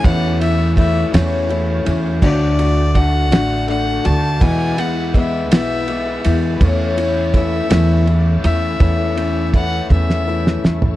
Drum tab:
CC |------------|x-----------|------------|------------|
RD |x-x-x-x-x-x-|--x-x-x-x-x-|x-x-x-x-x-x-|x-x-x-x-x-x-|
SD |------o-----|------o-----|------o-----|------o-----|
FT |------------|------------|------------|------------|
BD |o---o-------|o---o-------|o---o-------|o---o-------|

CC |------------|
RD |x-x-x-------|
SD |-------o-oo-|
FT |-----------o|
BD |o---o-o-----|